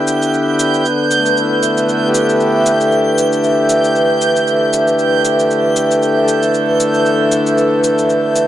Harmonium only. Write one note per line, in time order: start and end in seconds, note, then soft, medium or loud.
0.00 0.84 D3 medium
0.00 2.72 B3 medium
0.00 0.85 E4 medium
0.00 0.85 G4 medium
0.85 8.47 D3 medium
1.17 8.47 A3 medium
1.40 8.47 E4 medium
2.08 6.41 G4 medium
6.24 8.47 A4 medium